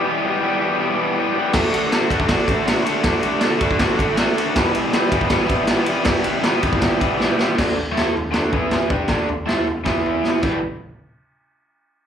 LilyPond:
<<
  \new Staff \with { instrumentName = "Overdriven electric guitar" } { \time 4/4 \key e \minor \tempo 4 = 159 <e, b, e g b g'>8 <e g b g'>8 <e g b g'>8 <e, b, e g b g'>8 <e g b g'>8 <e, b, e g b g'>8 <e g b g'>8 <e g b g'>8 | <d a d' fis'>8 <a d' fis'>8 <d a d' fis'>8 <d a d' fis'>8 <d a d' fis'>8 <d a d' fis'>8 <d a d' fis'>8 <a d' fis'>8 | <d a d' fis'>8 <a d' fis'>8 <d a d' fis'>8 <d a d' fis'>8 <d a d' fis'>8 <d a d' fis'>8 <d a d' fis'>8 <a d' fis'>8 | <e, b, e g b e'>8 <e g b e'>8 <e g b e'>8 <e, b, e g b e'>8 <e g b e'>8 <e, b, e g b e'>8 <e g b e'>8 <e g b e'>8 |
<e, b, e g b e'>8 <e g b e'>8 <e g b e'>8 <e, b, e g b e'>8 <e g b e'>8 <e, b, e g b e'>8 <e g b e'>8 <e g b e'>8 | <d a d'>8 r8 <a e' a'>8 r8 <d a d'>8 <e b e'>4 <g d' g'>8 | <d a d'>8 r8 <a e' a'>8 r8 <e b e'>4. <e, b, e g b e'>8 | r1 | }
  \new DrumStaff \with { instrumentName = "Drums" } \drummode { \time 4/4 r4 r4 r4 r4 | <cymc bd sn>8 cymr8 <cymr sn>8 <bd cymr>16 bd16 <bd cymr sn>8 <bd cymr>8 <cymr sn>8 cymr8 | <bd cymr sn>8 cymr8 <cymr sn>8 <bd cymr>16 bd16 <bd cymr sn>8 <bd cymr>8 <cymr sn>8 cymr8 | <bd cymr sn>8 cymr8 <cymr sn>8 <bd cymr>16 bd16 <bd cymr sn>8 <bd cymr>8 <cymr sn>8 cymr8 |
<bd cymr sn>8 cymr8 <cymr sn>8 <bd cymr>16 bd16 <bd cymr sn>8 <bd cymr>8 sn8 sn8 | <cymc bd sn tomfh>8 tomfh8 <sn tomfh>8 tomfh8 <sn tomfh>8 <bd tomfh>8 <sn tomfh>8 <bd tomfh>8 | <bd sn tomfh>8 tomfh8 <sn tomfh>8 tomfh8 <bd sn tomfh>8 tomfh8 sn8 <cymc bd>8 | r4 r4 r4 r4 | }
>>